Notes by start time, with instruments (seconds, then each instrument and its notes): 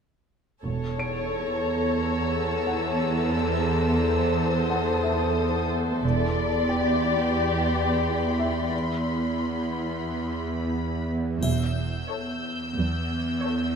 0.63 double bass section E1, synth drone E2, cello section E2, violin section A4 C#5 A5
0.99 grand piano C#5 D7
1.33 violin section A#5
1.99 violin section E6
2.67 grand piano F#5
3.34 violin section C5
4.59 violin section A5
4.70 grand piano F#5
4.74 violin section D#6
5.03 grand piano E5
6.02 double bass section E1, synth drone E2, cello section E2, violin section D5 B5 C6
6.69 violin section G4, grand piano G5
8.40 grand piano E5
11.42 double bass section E1, synth drone E2, cello section E2, grand piano E5, violin section E6 G6, triangle
12.10 violin section A4 C#5
12.77 cello section E2
13.45 violin section A4 C#5